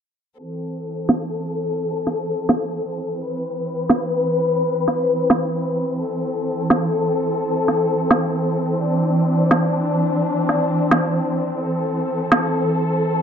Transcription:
0.38 string section E3 C4 A4
1.09 snare
2.07 snare
2.49 snare
3.19 string section B4
3.90 snare
4.88 snare
5.30 snare
6.00 string section A4
6.70 snare
7.68 snare
8.11 snare
8.81 string section D4
9.51 snare
10.49 snare
10.91 snare
11.61 string section A4
12.32 snare

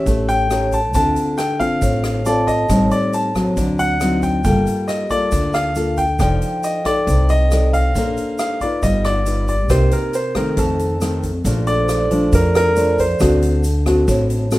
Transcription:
Already playing: nylon-string guitar C#4 G4, grand piano E5
0.06 upright bass A1, nylon-string guitar A3, kick, closed hi-hat, shaker
0.29 grand piano G5, closed hi-hat, shaker
0.50 nylon-string guitar C#4 G4 A#4, cross-stick, closed hi-hat, shaker
0.72 grand piano A5, kick, closed hi-hat, shaker
0.94 upright bass D2, nylon-string guitar D3 C4 F4 A4, grand piano A5, kick, closed hi-hat, shaker
1.16 closed hi-hat, shaker
1.38 grand piano G5, cross-stick, closed hi-hat, shaker
1.60 nylon-string guitar C4 F4 A4, grand piano F5, kick, closed hi-hat, shaker
1.81 upright bass A1, nylon-string guitar A2, kick, closed hi-hat, shaker
2.04 cross-stick, closed hi-hat, shaker
2.25 nylon-string guitar C4 F4 A4, grand piano D5, vibraphone A5, closed hi-hat, shaker
2.47 grand piano D#5, kick, closed hi-hat, shaker
2.69 upright bass A1, nylon-string guitar A2 G3 C4 D#4, kick, cross-stick, closed hi-hat, shaker
2.91 grand piano D5, closed hi-hat, shaker
3.13 grand piano A5, closed hi-hat, shaker
3.35 nylon-string guitar F#3 C4, kick, cross-stick, closed hi-hat, shaker
3.57 upright bass D2, nylon-string guitar D3, kick, closed hi-hat, shaker
3.79 grand piano F#5, closed hi-hat, shaker
4.01 nylon-string guitar F#3 C4 D#4, cross-stick, closed hi-hat, shaker
4.22 grand piano G5, kick, closed hi-hat, shaker
4.44 upright bass G1, nylon-string guitar G3 A#3 F4 A4, grand piano G5, kick, closed hi-hat, shaker
4.66 closed hi-hat, shaker
4.88 grand piano D#5, cross-stick, closed hi-hat, shaker
5.10 nylon-string guitar A#3 F4 A4, grand piano D5, kick, closed hi-hat, shaker
5.32 upright bass D2, nylon-string guitar D3, kick, closed hi-hat, shaker
5.53 grand piano F5, cross-stick, closed hi-hat, shaker
5.75 nylon-string guitar A#3 F4 A4, closed hi-hat, shaker
5.97 vibraphone G5, grand piano G5, kick, closed hi-hat, shaker
6.19 upright bass F1, nylon-string guitar F3 D#4 A4 D5, grand piano G5, kick, cross-stick, closed hi-hat, shaker
6.42 closed hi-hat, shaker
6.63 grand piano D#5, closed hi-hat, shaker
6.85 nylon-string guitar D#4 A4 D5, grand piano D5, kick, cross-stick, closed hi-hat, shaker
7.07 upright bass C2, nylon-string guitar C3, kick, closed hi-hat, shaker
7.29 grand piano D#5, closed hi-hat, shaker
7.51 nylon-string guitar D#4 A4 D5, cross-stick, closed hi-hat, shaker
7.73 grand piano F5, kick, closed hi-hat, shaker
7.95 upright bass A#1, nylon-string guitar A#3 D4 A4 C5, kick, closed hi-hat, shaker
8.17 closed hi-hat, shaker
8.39 grand piano F5, cross-stick, closed hi-hat, shaker
8.61 nylon-string guitar D#4 F4 B4, grand piano D5, kick, closed hi-hat, shaker
8.83 upright bass G1, nylon-string guitar G3, grand piano D#5, kick, closed hi-hat, shaker
9.04 grand piano D5, cross-stick, closed hi-hat, shaker
9.26 nylon-string guitar D#4 F4 B4, closed hi-hat, shaker
9.48 grand piano D5, kick, closed hi-hat, shaker
9.69 upright bass C2, nylon-string guitar C3 A#3 D#4 G4, vibraphone A#4, grand piano C5, kick, cross-stick, closed hi-hat, shaker
9.91 grand piano A#4, closed hi-hat, shaker
10.13 grand piano C5, closed hi-hat, shaker
10.35 nylon-string guitar D#3 A3 C4, grand piano A#4, kick, cross-stick, closed hi-hat, shaker
10.57 upright bass F2, nylon-string guitar F2, grand piano A4, kick, closed hi-hat, shaker
10.79 closed hi-hat, shaker
11.01 nylon-string guitar D#3 A3 C4, cross-stick, closed hi-hat, shaker
11.23 kick, closed hi-hat, shaker
11.45 upright bass A#1, nylon-string guitar A#2 F3 A3 D4, kick, closed hi-hat, shaker
11.67 vibraphone A4, grand piano D5, closed hi-hat, shaker
11.83 vibraphone C5
11.89 cross-stick, closed hi-hat, shaker
11.99 vibraphone D5
12.11 nylon-string guitar F3 A3 D4, kick, closed hi-hat, shaker
12.32 upright bass F2, nylon-string guitar F2, grand piano A#4, kick, closed hi-hat, shaker
12.54 grand piano A#4, cross-stick, closed hi-hat, shaker
12.76 nylon-string guitar F3 A3 D4, vibraphone D5, closed hi-hat, shaker
12.98 grand piano C5, kick, closed hi-hat, shaker
13.20 upright bass D2, nylon-string guitar D3 C4 F#4 A4, kick, cross-stick, closed hi-hat, shaker
13.42 closed hi-hat, shaker
13.64 closed hi-hat, shaker
13.86 nylon-string guitar C4 F#4 A4, kick, cross-stick, closed hi-hat, shaker
14.08 upright bass A1, nylon-string guitar A2, kick, closed hi-hat, shaker
14.30 closed hi-hat, shaker
14.51 nylon-string guitar C4 F#4 A4, cross-stick, closed hi-hat, shaker

